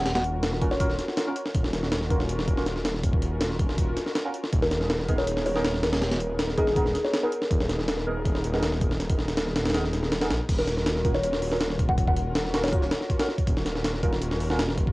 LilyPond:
<<
  \new Staff \with { instrumentName = "Kalimba" } { \time 4/4 \key ees \minor \tempo 4 = 161 ges''16 ges''8. r8. des''4. r8. | r1 | r1 | r16 bes'8 r4 des''16 des''16 r16 des''8 r8 bes'8 |
r4. aes'8 r8. des''8 bes'8.~ | bes'16 r2. r8. | r1 | r16 bes'8 r4 des''16 des''16 r4. ges''16~ |
ges''16 ges''8. r8. des''4. r8. | r1 | }
  \new Staff \with { instrumentName = "Analog synth pad" } { \time 4/4 \key ees \minor <des' f' ges' bes'>4. <des' f' ges' bes'>4. r4 | <des' f' ges' bes'>4. <des' f' ges' bes'>4. r4 | <des' f' ges' bes'>4. <des' f' ges' bes'>4. r4 | <ces' ees' aes' bes'>4. <ces' ees' aes' bes'>4. r4 |
<ces' ees' aes' bes'>4. <ces' ees' aes' bes'>4. r4 | <ces' ees' aes' bes'>4. <ces' ees' aes' bes'>4. r4 | <ces' ees' aes' bes'>4. <ces' ees' aes' bes'>4. r4 | <des' f' ges' bes'>4. <des' f' ges' bes'>4. r4 |
<des' f' ges' bes'>4. <des' f' ges' bes'>4. r4 | <des' f' ges' bes'>4. <des' f' ges' bes'>4. r4 | }
  \new Staff \with { instrumentName = "Synth stab" } { \time 4/4 \key ees \minor r4. <des' f' ges' bes'>16 r16 <des' f' ges' bes'>16 r4 <des' f' ges' bes'>16 r8 | r4. <des' f' ges' bes'>16 r4 <des' f' ges' bes'>16 r4 | r2. r16 <des' f' ges' bes'>16 r8 | r4. <ces' ees' aes' bes'>16 r4 <ces' ees' aes' bes'>16 r4 |
r4. <ces' ees' aes' bes'>16 r16 <ces' ees' aes' bes'>16 r4 <ces' ees' aes' bes'>16 r8 | r4. <ces' ees' aes' bes'>16 r4 <ces' ees' aes' bes'>16 r4 | r2 <ces' ees' aes' bes'>16 r4 <ces' ees' aes' bes'>16 r8 | r4. <des' f' ges' bes'>16 r4 <des' f' ges' bes'>16 r4 |
r4. <des' f' ges' bes'>16 r16 <des' f' ges' bes'>16 r4 <des' f' ges' bes'>16 r8 | r4. <des' f' ges' bes'>16 r4 <des' f' ges' bes'>16 r4 | }
  \new Staff \with { instrumentName = "Detuned saw bass" } { \clef bass \time 4/4 \key ees \minor ees,,4. ees,,4 r4. | ees,,4. ees,,4 ees,,4. | ees,,4. ees,,4 r4. | ees,,4. ees,,4 ees,,4. |
ees,,4. ees,,4 r4. | ees,,4. ees,,4 ees,,4. | ees,,4. ees,,4 ees,,4 bes,,8 | ees,,4. ees,,4 ees,,4. |
ees,,4. ees,,4 r4. | ees,,4. ees,,4 ees,,4. | }
  \new DrumStaff \with { instrumentName = "Drums" } \drummode { \time 4/4 <hh sn>16 <hh sn>16 hh8 <hh sn>16 sn16 <hh bd>16 sn16 <hh bd>16 sn16 <hh sn>16 sn16 <hh sn>8 hh16 sn16 | <hh bd>16 sn16 <hh sn>16 sn16 <hh sn>16 sn16 <hh bd>16 sn16 hh16 sn16 <hh bd>16 sn16 <hh sn>16 sn16 <hh sn>16 sn16 | <hh bd>16 bd16 hh8 <hh sn>16 sn16 <hh bd>16 sn16 <hh bd>8 <hh sn>16 sn16 <hh sn>8 hh16 sn16 | <hh bd>16 sn16 <hh sn>16 sn16 <hh sn>16 sn16 <hh bd>16 sn16 hh16 sn16 hho16 sn16 <hh sn>16 sn16 <hh sn>16 <hh sn>16 |
<hh sn>16 <hh sn>16 hh8 <hh sn>16 sn16 <hh bd>16 sn16 <hh bd>16 sn16 <hh sn>16 sn16 <hh sn>8 hh16 sn16 | <hh bd>16 sn16 <hh sn>16 sn16 <hh sn>16 sn8. <hh bd>16 sn16 hh16 sn16 <hh sn>16 sn16 <hh bd>16 sn16 | <hh sn>16 <hh bd>16 sn16 <hh sn>16 <hh sn>16 sn16 <hh sn>16 <hh sn>32 <hh sn>32 <hh sn>16 sn16 <hh sn>16 sn16 <hh sn>16 <hh sn>16 <hh sn>8 | <cymc hh bd>16 sn16 <hh sn>16 sn16 <hh sn>16 sn16 <hh bd>16 sn16 hh16 sn16 hho16 sn16 <hh sn>16 sn16 <hh bd>16 bd16 |
<hh bd>16 bd16 hh8 <hh sn>16 sn16 <hh sn>16 <hh sn>32 <hh sn>32 <hh bd>16 sn16 <hh sn>16 sn16 <hh bd>16 <hh sn>16 sn16 <hh bd>16 | <hh bd>16 sn16 <hh sn>16 sn16 <hh sn>16 sn16 <hh bd>16 sn16 hh16 sn16 hho16 sn16 <hh sn>16 sn16 <hh bd>16 bd16 | }
>>